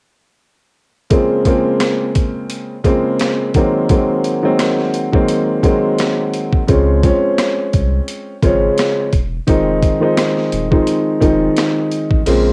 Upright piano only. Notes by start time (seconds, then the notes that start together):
1.10 C#3 F3 G#3 A#3 C4
1.45 C#3 F3 G#3 A#3 C4
2.84 C#3 F3 G#3 A#3 C4
3.55 D#3 F#3 G#3 A#3 C4
3.89 D#3 F#3 G#3 A#3 C4
4.42 D#3 F#3 G#3 A#3 C4
5.12 D#3 F#3 G#3 A#3 C4
5.63 D#3 F#3 G#3 A#3 C4
6.67 C#3 F3 G#3 C4 C#4
7.03 F3 G#3 C4 C#4
8.42 C#3 F3 G#3 C4 C#4
9.47 D#3 F3 G#3 C4 D#4
10.00 D#3 F3 G#3 C4 D#4
10.70 D#3 F3 G#3 C4 D#4
11.20 D#3 F3 G#3 C4 D#4
12.26 C#3 F3 G#3 A#3 C4